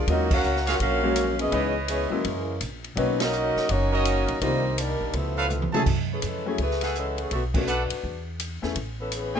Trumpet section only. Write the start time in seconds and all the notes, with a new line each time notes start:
0.66 F#4 G#4 C#5 F5
1.52 E4 B4 C#5 D#5
3.92 F#4 A#4 C#5 D#5
5.38 A4 B4 C#5 F5
5.73 G#4 A4 E5 A5
6.82 G#4 A4 E5 F#5
7.68 A4 B4 D5 F#5
9.35 B4 C#5 G#5